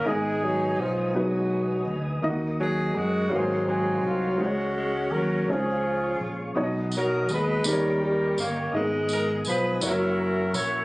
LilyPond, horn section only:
\new Staff \with { instrumentName = "Horn section" } { \time 6/8 \key gis \dorian \tempo 4. = 55 << { gis'4 eis'8 fis'4 r8 | r8 gis'8 fis'8 gis'8 gis'8 eis'8 | fis'4 ais'8 gis'4 r8 | r8 ais'8 b'8 ais'8 ais'8 cis''8 |
r8 ais'8 b'8 ais'8 ais'8 cis''8 | } \\ { <b dis'>4. <b dis'>4. | r4. <bis dis'>4. | cis'4. <cis' eis'>4. | r4. <cis' g'>4. |
r4. <cis' e'>4. | } >> }